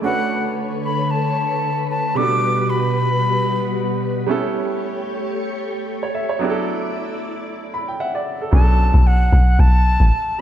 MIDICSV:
0, 0, Header, 1, 5, 480
1, 0, Start_track
1, 0, Key_signature, 2, "minor"
1, 0, Tempo, 530973
1, 30, Time_signature, 4, 2, 24, 8
1, 9412, End_track
2, 0, Start_track
2, 0, Title_t, "Flute"
2, 0, Program_c, 0, 73
2, 39, Note_on_c, 0, 78, 115
2, 481, Note_off_c, 0, 78, 0
2, 760, Note_on_c, 0, 83, 92
2, 1001, Note_on_c, 0, 81, 99
2, 1014, Note_off_c, 0, 83, 0
2, 1715, Note_off_c, 0, 81, 0
2, 1721, Note_on_c, 0, 81, 95
2, 1959, Note_on_c, 0, 86, 120
2, 1972, Note_off_c, 0, 81, 0
2, 2438, Note_on_c, 0, 83, 99
2, 2452, Note_off_c, 0, 86, 0
2, 3634, Note_off_c, 0, 83, 0
2, 7716, Note_on_c, 0, 81, 106
2, 8198, Note_on_c, 0, 78, 92
2, 8211, Note_off_c, 0, 81, 0
2, 8677, Note_on_c, 0, 81, 112
2, 8691, Note_off_c, 0, 78, 0
2, 9409, Note_off_c, 0, 81, 0
2, 9412, End_track
3, 0, Start_track
3, 0, Title_t, "String machine"
3, 0, Program_c, 1, 50
3, 0, Note_on_c, 1, 57, 84
3, 31, Note_on_c, 1, 71, 81
3, 31, Note_on_c, 1, 73, 97
3, 32, Note_on_c, 1, 50, 79
3, 1914, Note_off_c, 1, 57, 0
3, 1931, Note_off_c, 1, 50, 0
3, 1931, Note_off_c, 1, 73, 0
3, 1950, Note_on_c, 1, 47, 87
3, 1951, Note_on_c, 1, 55, 77
3, 1951, Note_on_c, 1, 66, 77
3, 3834, Note_off_c, 1, 71, 0
3, 3851, Note_off_c, 1, 47, 0
3, 3851, Note_off_c, 1, 55, 0
3, 3851, Note_off_c, 1, 66, 0
3, 3871, Note_on_c, 1, 57, 84
3, 3871, Note_on_c, 1, 67, 77
3, 3871, Note_on_c, 1, 73, 93
3, 5771, Note_off_c, 1, 67, 0
3, 5771, Note_off_c, 1, 73, 0
3, 5792, Note_on_c, 1, 64, 82
3, 5792, Note_on_c, 1, 74, 91
3, 7674, Note_off_c, 1, 57, 0
3, 7692, Note_off_c, 1, 64, 0
3, 7692, Note_off_c, 1, 74, 0
3, 9412, End_track
4, 0, Start_track
4, 0, Title_t, "Grand piano"
4, 0, Program_c, 2, 0
4, 0, Control_c, 2, 64, 127
4, 15, Note_on_c, 2, 57, 65
4, 25, Note_on_c, 2, 61, 59
4, 36, Note_on_c, 2, 62, 64
4, 41, Control_c, 2, 64, 0
4, 45, Note_on_c, 2, 66, 62
4, 55, Note_on_c, 2, 71, 72
4, 183, Control_c, 2, 64, 127
4, 1906, Note_off_c, 2, 57, 0
4, 1911, Note_off_c, 2, 61, 0
4, 1917, Note_off_c, 2, 62, 0
4, 1921, Note_off_c, 2, 66, 0
4, 1926, Note_off_c, 2, 71, 0
4, 1938, Note_on_c, 2, 47, 68
4, 1946, Note_on_c, 2, 55, 63
4, 1954, Note_on_c, 2, 59, 59
4, 1962, Control_c, 2, 64, 0
4, 1962, Note_on_c, 2, 62, 62
4, 1969, Note_on_c, 2, 66, 65
4, 1978, Note_on_c, 2, 69, 73
4, 2130, Control_c, 2, 64, 127
4, 3828, Note_off_c, 2, 47, 0
4, 3832, Note_off_c, 2, 55, 0
4, 3836, Note_off_c, 2, 59, 0
4, 3840, Note_off_c, 2, 62, 0
4, 3843, Note_off_c, 2, 66, 0
4, 3848, Note_off_c, 2, 69, 0
4, 3856, Note_on_c, 2, 55, 84
4, 3866, Note_on_c, 2, 59, 77
4, 3875, Note_on_c, 2, 61, 75
4, 3883, Control_c, 2, 64, 0
4, 3886, Note_on_c, 2, 64, 75
4, 3895, Note_on_c, 2, 69, 91
4, 4030, Control_c, 2, 64, 127
4, 5450, Note_on_c, 2, 73, 67
4, 5548, Note_off_c, 2, 73, 0
4, 5557, Note_on_c, 2, 76, 70
4, 5679, Note_off_c, 2, 76, 0
4, 5689, Note_on_c, 2, 73, 66
4, 5747, Note_off_c, 2, 55, 0
4, 5752, Note_off_c, 2, 59, 0
4, 5756, Note_off_c, 2, 61, 0
4, 5762, Note_off_c, 2, 64, 0
4, 5766, Note_off_c, 2, 69, 0
4, 5778, Note_on_c, 2, 54, 79
4, 5788, Note_on_c, 2, 59, 76
4, 5798, Note_on_c, 2, 62, 74
4, 5803, Control_c, 2, 64, 0
4, 5808, Note_on_c, 2, 64, 74
4, 5817, Note_on_c, 2, 67, 71
4, 5867, Note_off_c, 2, 67, 0
4, 5875, Note_on_c, 2, 69, 90
4, 5914, Note_off_c, 2, 73, 0
4, 5935, Control_c, 2, 64, 127
4, 6995, Note_on_c, 2, 83, 77
4, 7115, Note_off_c, 2, 83, 0
4, 7127, Note_on_c, 2, 79, 70
4, 7225, Note_off_c, 2, 79, 0
4, 7234, Note_on_c, 2, 76, 63
4, 7234, Note_on_c, 2, 78, 74
4, 7244, Note_off_c, 2, 69, 0
4, 7358, Note_off_c, 2, 76, 0
4, 7367, Note_on_c, 2, 74, 72
4, 7592, Note_off_c, 2, 74, 0
4, 7608, Note_on_c, 2, 69, 65
4, 7668, Note_off_c, 2, 54, 0
4, 7673, Note_off_c, 2, 59, 0
4, 7678, Note_off_c, 2, 62, 0
4, 7678, Note_off_c, 2, 78, 0
4, 7683, Note_off_c, 2, 64, 0
4, 7696, Note_on_c, 2, 54, 70
4, 7706, Note_on_c, 2, 59, 67
4, 7716, Note_on_c, 2, 61, 65
4, 7722, Control_c, 2, 64, 0
4, 7726, Note_on_c, 2, 62, 64
4, 7736, Note_on_c, 2, 68, 60
4, 7780, Note_off_c, 2, 69, 0
4, 7786, Note_off_c, 2, 68, 0
4, 7794, Note_on_c, 2, 69, 79
4, 7860, Control_c, 2, 64, 127
4, 9349, Note_off_c, 2, 54, 0
4, 9354, Note_off_c, 2, 59, 0
4, 9359, Note_off_c, 2, 61, 0
4, 9364, Note_off_c, 2, 62, 0
4, 9399, Note_off_c, 2, 69, 0
4, 9412, End_track
5, 0, Start_track
5, 0, Title_t, "Log drum bass"
5, 0, Program_c, 3, 39
5, 7710, Note_on_c, 3, 35, 109
5, 8065, Note_off_c, 3, 35, 0
5, 8083, Note_on_c, 3, 35, 101
5, 8415, Note_off_c, 3, 35, 0
5, 8430, Note_on_c, 3, 35, 110
5, 8659, Note_off_c, 3, 35, 0
5, 8670, Note_on_c, 3, 35, 99
5, 9026, Note_off_c, 3, 35, 0
5, 9042, Note_on_c, 3, 33, 87
5, 9145, Note_off_c, 3, 33, 0
5, 9412, End_track
0, 0, End_of_file